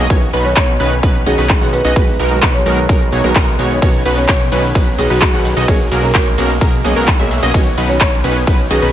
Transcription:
0.09 B1 D#3 B3 C#4 D#4 F#4 C#5, kick, closed hi-hat, shaker
0.22 closed hi-hat, shaker
0.33 B1 B3 C#4 D#4 F#4 B4, open hi-hat, shaker
0.44 D#3 B3 C#4 F#4 C#5, closed hi-hat, shaker
0.57 B1 C#4 D#4 F#4 C#5, kick, clap, closed hi-hat, shaker
0.68 closed hi-hat
0.79 B1 D#3 B3 C#4 D#4 F#4 B4, open hi-hat, shaker
0.92 closed hi-hat, shaker
1.03 B3 C#4 D#4 F#4 B4, kick, closed hi-hat, shaker
1.15 closed hi-hat
1.26 B1 D#3 B3 C#4 D#4 F#4 G#4 D#5, open hi-hat, shaker
1.38 B1 B3 C#4 D#4 F#4 B4, closed hi-hat, shaker
1.50 kick, clap, closed hi-hat, shaker
1.61 B1 D#3 B3 C#4 D#4 F#4 F#5, closed hi-hat
1.73 B4, open hi-hat, shaker
1.85 B1 B3 C#4 D#4 F#4 D#5, closed hi-hat, shaker
1.96 D#3 F#3 G#3 B3 F#4 B4, kick, closed hi-hat, shaker
2.08 closed hi-hat, shaker
2.19 B1 G#3 B3 D#4 F#4 A#4, open hi-hat, shaker
2.30 D#3 G#3 B3 F#4, closed hi-hat, shaker
2.43 G#3 B3 D#4 F#4 B4, kick, clap, closed hi-hat, shaker
2.54 C#5, closed hi-hat
2.65 B1 D#3 G#3 B3 D#4 F#4 A#4 C#5, open hi-hat, shaker
2.78 closed hi-hat, shaker
2.89 B1 G#3 B3 D#4 F#4 A#4, kick, closed hi-hat, shaker
3.01 closed hi-hat
3.12 B1 G#3 B3 D#4 F#4 C#5, open hi-hat, shaker
3.23 B1 D#3 G#3 B3 D#4 F#4 A#4, closed hi-hat, shaker
3.36 B3 D#4 F#4 A#4, kick, clap, closed hi-hat, shaker
3.47 closed hi-hat
3.58 B1 D#3 G#3 B3 D#4 F#4 C#5, open hi-hat, shaker
3.71 closed hi-hat, shaker
3.82 B1 D#3 B3 C#4 D#4 F#4 C#5, kick, closed hi-hat, ride, shaker
3.94 closed hi-hat, shaker
4.05 B1 B3 C#4 D#4 F#4 B4, open hi-hat, ride, shaker
4.16 D#3 B3 C#4 F#4 C#5, closed hi-hat, shaker
4.29 B3 F#4 C#5, kick, clap, closed hi-hat, ride, shaker
4.40 closed hi-hat
4.51 B1 D#3 B3 C#4 D#4 F#4 B4, open hi-hat, ride, shaker
4.64 closed hi-hat, shaker
4.75 B1 B3 C#4 D#4 F#4 B4, kick, closed hi-hat, ride, shaker
4.87 closed hi-hat
4.98 B1 D#3 B3 C#4 D#4 F#4 G#4 D#5, open hi-hat, ride, shaker
5.10 B1 B3 C#4 D#4 F#4 B4, closed hi-hat, shaker
5.22 kick, clap, closed hi-hat, ride, shaker
5.33 B1 D#3 B3 C#4 D#4 F#4 F#5, closed hi-hat
5.45 open hi-hat, ride, shaker
5.57 B1 B3 C#4 D#4 F#4 D#5, closed hi-hat, shaker
5.68 B2 F#3 G#3 A#3 C#4 F#4 G#4 C#5, kick, closed hi-hat, ride, shaker
5.80 closed hi-hat, shaker
5.92 B1 A#3 C#4 F#4 G#4 A#4, open hi-hat, ride, shaker
6.03 B2 F#3 A#3 C#4 G#4 A#4, closed hi-hat, shaker
6.15 A#3 C#4 F#4 C#5, kick, clap, closed hi-hat, ride, shaker
6.26 closed hi-hat
6.37 B1 B2 F#3 A#3 C#4 F#4 G#4 A#4 C#5, open hi-hat, ride, shaker
6.50 closed hi-hat, shaker
6.61 B1 A#3 C#4 F#4 G#4 A#4, kick, closed hi-hat, ride, shaker
6.73 closed hi-hat
6.84 B1 B2 F#3 A#3 C#4 F#4 G#4 D#5, open hi-hat, ride, shaker
6.96 B1 A#3 C#4 F#4 G#4 A#4, closed hi-hat, shaker
7.08 kick, clap, closed hi-hat, ride, shaker
7.19 B1 B2 F#3 A#3 C#4 F#4 G#4 E5, closed hi-hat
7.31 open hi-hat, ride, shaker
7.43 B1 A#3 C#4 F#4 G#4 D#5, closed hi-hat, shaker
7.54 D#3 B3 C#4 D#4 F#4 C#5, kick, closed hi-hat, ride, shaker
7.66 closed hi-hat, shaker
7.78 B1 B3 C#4 D#4 F#4 B4, open hi-hat, ride, shaker
7.89 D#3 B3 C#4 F#4 C#5, closed hi-hat, shaker
8.01 C#4 F#4 C#5, kick, clap, closed hi-hat, ride, shaker
8.12 closed hi-hat
8.23 B1 D#3 B3 C#4 D#4 F#4 B4, open hi-hat, ride, shaker
8.36 closed hi-hat, shaker
8.47 B3 C#4 D#4 F#4 B4, kick, closed hi-hat, ride, shaker
8.59 closed hi-hat
8.70 B1 D#3 B3 C#4 D#4 F#4 G#4 D#5, open hi-hat, ride, shaker
8.82 B1 B3 C#4 D#4 F#4 B4, closed hi-hat, shaker

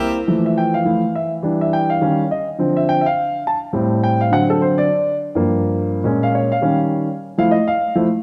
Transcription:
Already playing: C4 G4 A#4 E5
0.00 A#3 C4 E4
0.27 E3 F3 A3
0.46 E5
0.58 G5
0.74 F5
0.85 F3 A3 E4
1.15 E5
1.43 E3 G3 D4
1.61 E5
1.73 G5
1.90 F5
2.01 D#3 G3 C#4
2.31 D#5
2.58 D3 F3 C4
2.77 E5
2.89 G5
3.01 E5
3.06 F5
3.47 A5
3.73 A2 G3 C4
4.04 G5
4.21 F5
4.31 D3 F#3 C4 F#5
4.50 A4
4.62 C5
4.78 D5
5.35 G2 F3 A#3
6.04 A#2 G#3 C#4
6.23 F5
6.35 C#5
6.52 F5
6.61 D#3 G3 C#4
7.38 F3 A3 E4 F5
7.51 D#5
7.68 F5
7.96 F3 A3 E4

